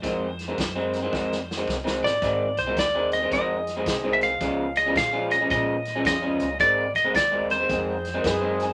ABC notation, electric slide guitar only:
X:1
M:4/4
L:1/16
Q:"Swing" 1/4=110
K:Ab
V:1 name="Electric slide guitar"
c12 z2 =d2- | =d2 c2 d2 e2 e4- e3/2 _f/2 =f2- | f2 e2 f2 e2 e4 e4 | =d2 e2 d2 c8- c2 |]